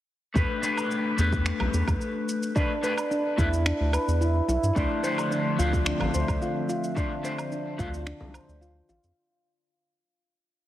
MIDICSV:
0, 0, Header, 1, 7, 480
1, 0, Start_track
1, 0, Tempo, 550459
1, 311, Time_signature, 4, 2, 24, 8
1, 9308, End_track
2, 0, Start_track
2, 0, Title_t, "Clean electric guitar"
2, 0, Program_c, 0, 27
2, 296, Note_on_c, 0, 57, 71
2, 303, Note_on_c, 0, 62, 62
2, 308, Note_on_c, 0, 67, 59
2, 316, Note_on_c, 0, 71, 69
2, 516, Note_off_c, 0, 57, 0
2, 519, Note_off_c, 0, 62, 0
2, 523, Note_off_c, 0, 67, 0
2, 525, Note_off_c, 0, 71, 0
2, 539, Note_on_c, 0, 57, 88
2, 545, Note_on_c, 0, 62, 78
2, 553, Note_on_c, 0, 67, 70
2, 557, Note_on_c, 0, 71, 97
2, 998, Note_off_c, 0, 57, 0
2, 1001, Note_off_c, 0, 62, 0
2, 1003, Note_off_c, 0, 67, 0
2, 1007, Note_off_c, 0, 71, 0
2, 1018, Note_on_c, 0, 57, 79
2, 1028, Note_on_c, 0, 62, 69
2, 1039, Note_on_c, 0, 67, 68
2, 1051, Note_on_c, 0, 71, 86
2, 2197, Note_off_c, 0, 57, 0
2, 2202, Note_off_c, 0, 62, 0
2, 2208, Note_off_c, 0, 67, 0
2, 2214, Note_off_c, 0, 71, 0
2, 2228, Note_on_c, 0, 57, 78
2, 2232, Note_on_c, 0, 62, 74
2, 2239, Note_on_c, 0, 67, 62
2, 2244, Note_on_c, 0, 71, 86
2, 2360, Note_off_c, 0, 57, 0
2, 2362, Note_off_c, 0, 62, 0
2, 2364, Note_off_c, 0, 67, 0
2, 2368, Note_off_c, 0, 71, 0
2, 2463, Note_on_c, 0, 57, 97
2, 2467, Note_on_c, 0, 62, 85
2, 2472, Note_on_c, 0, 67, 83
2, 2479, Note_on_c, 0, 71, 109
2, 2549, Note_off_c, 0, 57, 0
2, 2551, Note_off_c, 0, 62, 0
2, 2553, Note_off_c, 0, 67, 0
2, 2557, Note_off_c, 0, 71, 0
2, 2940, Note_on_c, 0, 57, 94
2, 2947, Note_on_c, 0, 62, 83
2, 2951, Note_on_c, 0, 67, 83
2, 2957, Note_on_c, 0, 71, 106
2, 3027, Note_off_c, 0, 57, 0
2, 3031, Note_off_c, 0, 62, 0
2, 3033, Note_off_c, 0, 67, 0
2, 3036, Note_off_c, 0, 71, 0
2, 4141, Note_on_c, 0, 57, 73
2, 4146, Note_on_c, 0, 62, 63
2, 4154, Note_on_c, 0, 67, 65
2, 4160, Note_on_c, 0, 72, 73
2, 4359, Note_off_c, 0, 57, 0
2, 4361, Note_off_c, 0, 62, 0
2, 4365, Note_off_c, 0, 67, 0
2, 4368, Note_off_c, 0, 72, 0
2, 4388, Note_on_c, 0, 57, 92
2, 4395, Note_on_c, 0, 62, 81
2, 4399, Note_on_c, 0, 67, 83
2, 4403, Note_on_c, 0, 72, 105
2, 4842, Note_off_c, 0, 57, 0
2, 4845, Note_off_c, 0, 62, 0
2, 4848, Note_off_c, 0, 67, 0
2, 4850, Note_off_c, 0, 72, 0
2, 4851, Note_on_c, 0, 57, 79
2, 4863, Note_on_c, 0, 62, 71
2, 4875, Note_on_c, 0, 67, 71
2, 4887, Note_on_c, 0, 72, 85
2, 6034, Note_off_c, 0, 57, 0
2, 6040, Note_off_c, 0, 62, 0
2, 6045, Note_off_c, 0, 67, 0
2, 6051, Note_off_c, 0, 72, 0
2, 6062, Note_on_c, 0, 57, 86
2, 6066, Note_on_c, 0, 62, 74
2, 6073, Note_on_c, 0, 67, 76
2, 6077, Note_on_c, 0, 72, 97
2, 6197, Note_off_c, 0, 57, 0
2, 6199, Note_off_c, 0, 62, 0
2, 6202, Note_off_c, 0, 67, 0
2, 6204, Note_off_c, 0, 72, 0
2, 6304, Note_on_c, 0, 57, 101
2, 6309, Note_on_c, 0, 62, 90
2, 6314, Note_on_c, 0, 67, 93
2, 6318, Note_on_c, 0, 72, 116
2, 6389, Note_off_c, 0, 57, 0
2, 6392, Note_off_c, 0, 62, 0
2, 6394, Note_off_c, 0, 67, 0
2, 6396, Note_off_c, 0, 72, 0
2, 6784, Note_on_c, 0, 57, 94
2, 6789, Note_on_c, 0, 62, 86
2, 6795, Note_on_c, 0, 67, 87
2, 6801, Note_on_c, 0, 72, 106
2, 6869, Note_off_c, 0, 57, 0
2, 6872, Note_off_c, 0, 62, 0
2, 6875, Note_off_c, 0, 67, 0
2, 6878, Note_off_c, 0, 72, 0
2, 9308, End_track
3, 0, Start_track
3, 0, Title_t, "Handpan"
3, 0, Program_c, 1, 114
3, 2230, Note_on_c, 1, 62, 91
3, 2459, Note_off_c, 1, 62, 0
3, 2473, Note_on_c, 1, 71, 71
3, 2591, Note_off_c, 1, 71, 0
3, 2712, Note_on_c, 1, 62, 77
3, 2831, Note_off_c, 1, 62, 0
3, 2948, Note_on_c, 1, 64, 92
3, 3178, Note_off_c, 1, 64, 0
3, 3190, Note_on_c, 1, 62, 89
3, 3419, Note_off_c, 1, 62, 0
3, 3428, Note_on_c, 1, 71, 71
3, 3549, Note_off_c, 1, 71, 0
3, 3671, Note_on_c, 1, 64, 77
3, 3899, Note_off_c, 1, 64, 0
3, 3911, Note_on_c, 1, 64, 92
3, 4140, Note_off_c, 1, 64, 0
3, 4152, Note_on_c, 1, 62, 93
3, 4380, Note_off_c, 1, 62, 0
3, 4392, Note_on_c, 1, 72, 73
3, 4511, Note_off_c, 1, 72, 0
3, 4633, Note_on_c, 1, 62, 81
3, 4751, Note_off_c, 1, 62, 0
3, 4874, Note_on_c, 1, 65, 102
3, 5101, Note_off_c, 1, 65, 0
3, 5115, Note_on_c, 1, 62, 91
3, 5342, Note_off_c, 1, 62, 0
3, 5359, Note_on_c, 1, 72, 73
3, 5474, Note_off_c, 1, 72, 0
3, 5596, Note_on_c, 1, 65, 78
3, 5822, Note_off_c, 1, 65, 0
3, 5836, Note_on_c, 1, 65, 94
3, 6062, Note_off_c, 1, 65, 0
3, 6078, Note_on_c, 1, 62, 96
3, 6303, Note_off_c, 1, 62, 0
3, 6319, Note_on_c, 1, 72, 77
3, 6434, Note_off_c, 1, 72, 0
3, 6558, Note_on_c, 1, 62, 83
3, 6674, Note_off_c, 1, 62, 0
3, 6796, Note_on_c, 1, 65, 97
3, 7022, Note_off_c, 1, 65, 0
3, 7034, Note_on_c, 1, 62, 104
3, 7261, Note_off_c, 1, 62, 0
3, 7271, Note_on_c, 1, 72, 70
3, 7390, Note_off_c, 1, 72, 0
3, 7510, Note_on_c, 1, 65, 80
3, 7739, Note_off_c, 1, 65, 0
3, 7753, Note_on_c, 1, 65, 99
3, 7980, Note_off_c, 1, 65, 0
3, 9308, End_track
4, 0, Start_track
4, 0, Title_t, "Ambient pad"
4, 0, Program_c, 2, 92
4, 4141, Note_on_c, 2, 60, 74
4, 4143, Note_on_c, 2, 50, 80
4, 4145, Note_on_c, 2, 53, 74
4, 4146, Note_on_c, 2, 76, 89
4, 7951, Note_off_c, 2, 60, 0
4, 7952, Note_off_c, 2, 50, 0
4, 7953, Note_off_c, 2, 53, 0
4, 7954, Note_off_c, 2, 76, 0
4, 9308, End_track
5, 0, Start_track
5, 0, Title_t, "Analog synth bass"
5, 0, Program_c, 3, 38
5, 308, Note_on_c, 3, 40, 95
5, 389, Note_off_c, 3, 40, 0
5, 1032, Note_on_c, 3, 40, 95
5, 1323, Note_off_c, 3, 40, 0
5, 1395, Note_on_c, 3, 35, 79
5, 1468, Note_off_c, 3, 35, 0
5, 1513, Note_on_c, 3, 40, 98
5, 1591, Note_off_c, 3, 40, 0
5, 1633, Note_on_c, 3, 40, 85
5, 1707, Note_off_c, 3, 40, 0
5, 2949, Note_on_c, 3, 40, 101
5, 3241, Note_off_c, 3, 40, 0
5, 3316, Note_on_c, 3, 38, 84
5, 3464, Note_off_c, 3, 38, 0
5, 3556, Note_on_c, 3, 40, 79
5, 3843, Note_off_c, 3, 40, 0
5, 3908, Note_on_c, 3, 35, 107
5, 3989, Note_off_c, 3, 35, 0
5, 4036, Note_on_c, 3, 43, 91
5, 4109, Note_off_c, 3, 43, 0
5, 4153, Note_on_c, 3, 38, 100
5, 4231, Note_off_c, 3, 38, 0
5, 4874, Note_on_c, 3, 38, 98
5, 5164, Note_off_c, 3, 38, 0
5, 5238, Note_on_c, 3, 33, 80
5, 5310, Note_off_c, 3, 33, 0
5, 5360, Note_on_c, 3, 38, 97
5, 5435, Note_off_c, 3, 38, 0
5, 5479, Note_on_c, 3, 38, 88
5, 5550, Note_off_c, 3, 38, 0
5, 6796, Note_on_c, 3, 38, 95
5, 7085, Note_off_c, 3, 38, 0
5, 7160, Note_on_c, 3, 36, 85
5, 7305, Note_off_c, 3, 36, 0
5, 7397, Note_on_c, 3, 38, 76
5, 7684, Note_off_c, 3, 38, 0
5, 7753, Note_on_c, 3, 33, 115
5, 7831, Note_off_c, 3, 33, 0
5, 7879, Note_on_c, 3, 41, 93
5, 7950, Note_off_c, 3, 41, 0
5, 9308, End_track
6, 0, Start_track
6, 0, Title_t, "Frame drum"
6, 1393, Note_on_c, 9, 64, 71
6, 1481, Note_off_c, 9, 64, 0
6, 5229, Note_on_c, 9, 64, 73
6, 5316, Note_off_c, 9, 64, 0
6, 7155, Note_on_c, 9, 64, 86
6, 7242, Note_off_c, 9, 64, 0
6, 9308, End_track
7, 0, Start_track
7, 0, Title_t, "Drums"
7, 310, Note_on_c, 9, 36, 113
7, 315, Note_on_c, 9, 82, 32
7, 397, Note_off_c, 9, 36, 0
7, 402, Note_off_c, 9, 82, 0
7, 552, Note_on_c, 9, 82, 70
7, 639, Note_off_c, 9, 82, 0
7, 675, Note_on_c, 9, 77, 57
7, 680, Note_on_c, 9, 82, 42
7, 762, Note_off_c, 9, 77, 0
7, 767, Note_off_c, 9, 82, 0
7, 793, Note_on_c, 9, 82, 32
7, 880, Note_off_c, 9, 82, 0
7, 1033, Note_on_c, 9, 82, 69
7, 1120, Note_off_c, 9, 82, 0
7, 1155, Note_on_c, 9, 36, 100
7, 1159, Note_on_c, 9, 82, 39
7, 1243, Note_off_c, 9, 36, 0
7, 1246, Note_off_c, 9, 82, 0
7, 1271, Note_on_c, 9, 26, 74
7, 1276, Note_on_c, 9, 82, 33
7, 1358, Note_off_c, 9, 26, 0
7, 1364, Note_off_c, 9, 82, 0
7, 1395, Note_on_c, 9, 77, 72
7, 1482, Note_off_c, 9, 77, 0
7, 1516, Note_on_c, 9, 82, 77
7, 1603, Note_off_c, 9, 82, 0
7, 1635, Note_on_c, 9, 36, 96
7, 1635, Note_on_c, 9, 77, 57
7, 1640, Note_on_c, 9, 82, 40
7, 1722, Note_off_c, 9, 36, 0
7, 1722, Note_off_c, 9, 77, 0
7, 1728, Note_off_c, 9, 82, 0
7, 1754, Note_on_c, 9, 82, 29
7, 1841, Note_off_c, 9, 82, 0
7, 1995, Note_on_c, 9, 82, 72
7, 2082, Note_off_c, 9, 82, 0
7, 2117, Note_on_c, 9, 82, 41
7, 2205, Note_off_c, 9, 82, 0
7, 2230, Note_on_c, 9, 36, 107
7, 2233, Note_on_c, 9, 82, 35
7, 2317, Note_off_c, 9, 36, 0
7, 2320, Note_off_c, 9, 82, 0
7, 2474, Note_on_c, 9, 82, 70
7, 2561, Note_off_c, 9, 82, 0
7, 2594, Note_on_c, 9, 77, 58
7, 2599, Note_on_c, 9, 82, 46
7, 2682, Note_off_c, 9, 77, 0
7, 2687, Note_off_c, 9, 82, 0
7, 2715, Note_on_c, 9, 82, 31
7, 2802, Note_off_c, 9, 82, 0
7, 2950, Note_on_c, 9, 36, 96
7, 2954, Note_on_c, 9, 82, 77
7, 3038, Note_off_c, 9, 36, 0
7, 3041, Note_off_c, 9, 82, 0
7, 3081, Note_on_c, 9, 82, 45
7, 3168, Note_off_c, 9, 82, 0
7, 3191, Note_on_c, 9, 26, 81
7, 3196, Note_on_c, 9, 82, 31
7, 3278, Note_off_c, 9, 26, 0
7, 3283, Note_off_c, 9, 82, 0
7, 3429, Note_on_c, 9, 77, 73
7, 3434, Note_on_c, 9, 82, 77
7, 3517, Note_off_c, 9, 77, 0
7, 3521, Note_off_c, 9, 82, 0
7, 3562, Note_on_c, 9, 82, 46
7, 3650, Note_off_c, 9, 82, 0
7, 3677, Note_on_c, 9, 82, 32
7, 3764, Note_off_c, 9, 82, 0
7, 3917, Note_on_c, 9, 82, 67
7, 4004, Note_off_c, 9, 82, 0
7, 4043, Note_on_c, 9, 82, 46
7, 4130, Note_off_c, 9, 82, 0
7, 4152, Note_on_c, 9, 36, 115
7, 4157, Note_on_c, 9, 82, 33
7, 4239, Note_off_c, 9, 36, 0
7, 4244, Note_off_c, 9, 82, 0
7, 4395, Note_on_c, 9, 82, 75
7, 4483, Note_off_c, 9, 82, 0
7, 4517, Note_on_c, 9, 77, 55
7, 4522, Note_on_c, 9, 82, 44
7, 4605, Note_off_c, 9, 77, 0
7, 4610, Note_off_c, 9, 82, 0
7, 4637, Note_on_c, 9, 82, 33
7, 4724, Note_off_c, 9, 82, 0
7, 4878, Note_on_c, 9, 82, 76
7, 4965, Note_off_c, 9, 82, 0
7, 4998, Note_on_c, 9, 36, 103
7, 5004, Note_on_c, 9, 82, 44
7, 5086, Note_off_c, 9, 36, 0
7, 5091, Note_off_c, 9, 82, 0
7, 5111, Note_on_c, 9, 26, 79
7, 5116, Note_on_c, 9, 82, 34
7, 5199, Note_off_c, 9, 26, 0
7, 5203, Note_off_c, 9, 82, 0
7, 5237, Note_on_c, 9, 77, 66
7, 5324, Note_off_c, 9, 77, 0
7, 5357, Note_on_c, 9, 82, 80
7, 5444, Note_off_c, 9, 82, 0
7, 5479, Note_on_c, 9, 36, 106
7, 5479, Note_on_c, 9, 77, 51
7, 5484, Note_on_c, 9, 82, 41
7, 5566, Note_off_c, 9, 36, 0
7, 5566, Note_off_c, 9, 77, 0
7, 5571, Note_off_c, 9, 82, 0
7, 5598, Note_on_c, 9, 82, 33
7, 5685, Note_off_c, 9, 82, 0
7, 5838, Note_on_c, 9, 82, 75
7, 5925, Note_off_c, 9, 82, 0
7, 5963, Note_on_c, 9, 82, 47
7, 6050, Note_off_c, 9, 82, 0
7, 6073, Note_on_c, 9, 36, 115
7, 6079, Note_on_c, 9, 82, 35
7, 6161, Note_off_c, 9, 36, 0
7, 6166, Note_off_c, 9, 82, 0
7, 6319, Note_on_c, 9, 82, 70
7, 6406, Note_off_c, 9, 82, 0
7, 6439, Note_on_c, 9, 77, 60
7, 6444, Note_on_c, 9, 82, 46
7, 6526, Note_off_c, 9, 77, 0
7, 6531, Note_off_c, 9, 82, 0
7, 6557, Note_on_c, 9, 82, 30
7, 6644, Note_off_c, 9, 82, 0
7, 6793, Note_on_c, 9, 36, 104
7, 6797, Note_on_c, 9, 82, 79
7, 6880, Note_off_c, 9, 36, 0
7, 6884, Note_off_c, 9, 82, 0
7, 6923, Note_on_c, 9, 82, 45
7, 7010, Note_off_c, 9, 82, 0
7, 7034, Note_on_c, 9, 26, 74
7, 7039, Note_on_c, 9, 82, 32
7, 7121, Note_off_c, 9, 26, 0
7, 7126, Note_off_c, 9, 82, 0
7, 7274, Note_on_c, 9, 77, 74
7, 7279, Note_on_c, 9, 82, 80
7, 7361, Note_off_c, 9, 77, 0
7, 7366, Note_off_c, 9, 82, 0
7, 7405, Note_on_c, 9, 82, 43
7, 7492, Note_off_c, 9, 82, 0
7, 7518, Note_on_c, 9, 82, 33
7, 7605, Note_off_c, 9, 82, 0
7, 7756, Note_on_c, 9, 82, 73
7, 7843, Note_off_c, 9, 82, 0
7, 7879, Note_on_c, 9, 82, 45
7, 7966, Note_off_c, 9, 82, 0
7, 9308, End_track
0, 0, End_of_file